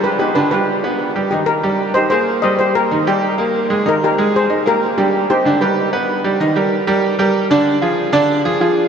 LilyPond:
<<
  \new Staff \with { instrumentName = "Steel pan" } { \time 4/4 \key ees \major \tempo 4 = 189 <g' b'>8 <ees' g'>8 <g' b'>8 <g' b'>2 r8 | <ees' g'>8 <g' bes'>4. <g' c''>8 <aes' c''>4 <c'' ees''>8 | <g' c''>8 <g' bes'>4 <ees' g'>4 r4. | <ees' bes'>8 <g' bes'>4 <aes' c''>4 <g' bes'>4 <d' g'>8~ |
<d' g'>8 <ees' g'>4 <g' b'>2 r8 | r1 | r1 | }
  \new Staff \with { instrumentName = "Grand piano" } { \time 4/4 \key ees \major <g g'>8 <b b'>8 <d d'>8 <g g'>4 <b b'>4 <g g'>8 | <ees ees'>4 <g g'>4 <ees' ees''>8 <bes bes'>4 <g g'>8~ | <g g'>8 <bes bes'>8 <ees ees'>8 <g g'>4 <bes bes'>4 <aes aes'>8 | <ees ees'>4 <aes aes'>4 <ees' ees''>8 <bes bes'>4 <g g'>8~ |
<g g'>8 <c' c''>8 <d d'>8 <g g'>4 <b b'>4 <g g'>8 | <ees ees' ees''>8 <g g' bes'>4 <g g' bes'>4 <g g' bes'>4 <d d' d''>8~ | <d d' d''>8 <f f' aes'>4 <d d' d''>4 <f f' aes'>8 <f f' aes'>4 | }
>>